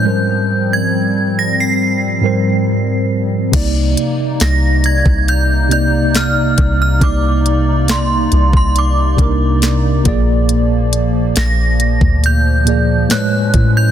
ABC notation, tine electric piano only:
X:1
M:4/4
L:1/8
Q:1/4=69
K:Cm
V:1 name="Tine electric piano"
[A,,G,Bc]3 z2 [A,,G,Bc]2 z | [C,B,Ed]3 z2 [C,B,Ed]2 z | [C,B,Ed]3 z2 [C,B,DEB]2 [B,,B,Ad]- | [B,,B,Ad]2 z3 [B,,B,Ad] [=A,,^G,=B^c]2 |]